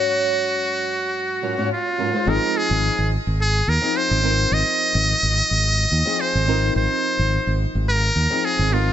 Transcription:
0.00 1.41 G#2 medium
0.00 1.41 F#3 medium
0.00 1.41 C#4 medium
0.00 1.71 F#4 loud
0.00 1.55 C#5 medium
0.00 1.55 F5 medium
1.42 1.54 G#2 medium
1.42 1.54 F#3 medium
1.42 1.54 C#4 medium
1.42 1.54 F4 medium
1.42 1.55 A#4 medium
1.57 1.69 G#2 medium
1.57 1.69 F#3 medium
1.57 1.69 C#4 medium
1.57 1.69 F4 medium
1.57 1.69 C#5 medium
1.72 2.31 F4 medium
1.98 2.10 G#2 medium
1.98 2.10 F#3 medium
1.98 2.10 C#4 medium
1.98 2.11 F4 medium
1.98 2.11 A#4 medium
2.13 2.54 G#3 medium
2.13 2.26 D#4 medium
2.13 2.27 F4 medium
2.13 2.28 C5 medium
2.25 2.37 G#1 loud
2.25 3.10 F3 loud
2.25 3.11 C4 medium
2.25 3.11 D#4 loud
2.25 3.12 G#4 loud
2.25 2.59 A#4 loud
2.57 3.12 G#4 loud
2.70 2.88 G#1 loud
2.98 3.16 G#1 medium
3.27 3.60 G#1 medium
3.41 3.71 G#4 loud
3.67 3.77 D#2 medium
3.67 3.98 A#4 loud
3.81 4.20 F3 medium
3.81 4.20 C4 medium
3.81 4.20 D#4 medium
3.81 4.20 G#4 medium
3.97 4.55 C5 loud
4.11 4.44 G#1 medium
4.21 6.02 F3 medium
4.21 6.03 C4 medium
4.21 6.03 D#4 medium
4.21 6.04 A#4 medium
4.51 4.61 G#1 loud
4.51 6.22 D#5 loud
4.95 5.12 G#1 loud
5.23 5.40 G#1 medium
5.51 5.85 G#1 medium
5.91 6.01 D#2 medium
6.05 6.44 F3 medium
6.05 6.44 C4 medium
6.05 6.44 D#4 medium
6.05 6.45 G#4 medium
6.21 6.76 C5 loud
6.35 6.69 G#1 medium
6.46 8.26 F3 medium
6.46 8.27 C4 medium
6.46 8.27 D#4 medium
6.46 8.28 A#4 medium
6.75 6.86 G#1 loud
6.75 7.57 C5 loud
7.19 7.37 G#1 loud
7.47 7.64 G#1 medium
7.75 8.09 G#1 medium
7.89 8.47 A#4 loud
8.15 8.26 D#2 medium
8.30 8.68 F3 medium
8.30 8.68 C4 medium
8.30 8.69 D#4 medium
8.30 8.69 G#4 loud
8.45 8.74 G#4 loud
8.59 8.93 G#1 medium
8.70 8.93 F3 medium
8.70 8.93 C4 medium
8.70 8.93 D#4 medium
8.70 8.93 F4 loud
8.70 8.93 A#4 medium

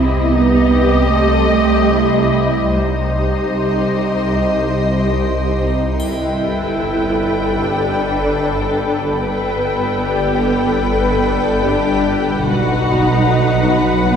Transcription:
0.00 2.71 C2 medium
0.00 2.74 C2 medium
0.00 0.30 C4 medium
0.00 0.31 E4 soft
0.00 2.71 G4 medium
0.00 2.73 G4 soft
0.00 2.71 D#5 medium
0.00 2.74 D#5 soft
0.00 2.74 C6 soft
0.30 1.12 B3 medium
0.30 0.72 D#4 soft
0.73 1.13 G4 soft
1.12 2.75 A3 medium
1.12 1.54 A4 soft
1.54 1.94 G4 soft
1.94 2.75 E4 soft
2.74 5.75 C2 soft
2.74 5.95 C2 medium
2.74 5.14 G3 soft
2.74 5.59 D#4 soft
2.74 5.95 G4 soft
2.74 5.75 G4 soft
2.74 5.75 C5 soft
2.74 5.75 D#5 soft
2.74 5.95 D#5 soft
2.74 5.95 C6 soft
5.59 5.97 D#4 soft
5.98 9.22 G1 medium
5.98 9.20 G1 soft
5.98 7.61 E4 soft
5.98 9.22 A4 soft
5.98 9.20 A4 soft
5.98 9.20 B4 soft
5.98 9.23 D5 soft
5.98 9.19 G5 soft
5.98 9.23 B5 soft
5.98 triangle soft
7.62 9.24 D4 soft
7.62 7.99 G4 soft
8.01 9.23 A4 soft
9.23 12.43 G1 medium
9.23 12.44 G1 soft
9.23 10.82 B3 medium
9.23 12.44 A4 soft
9.23 10.04 B4 soft
9.23 12.44 B4 soft
9.23 12.44 D5 soft
9.23 12.44 G5 soft
9.23 12.44 B5 soft
10.04 10.86 G4 soft
10.85 11.65 B3 medium
10.85 11.25 B4 soft
11.25 11.66 A4 medium
11.66 12.07 D4 medium
11.66 12.47 G4 soft
12.47 14.16 B1 medium
12.47 14.06 D#4 medium
12.47 13.27 F#4 medium
12.47 14.16 B4 medium
12.47 14.16 B4 soft
12.47 14.16 F#5 soft
12.47 14.16 B5 soft
13.29 14.08 F#4 medium
14.10 14.16 B3 medium
14.10 14.16 D#4 soft

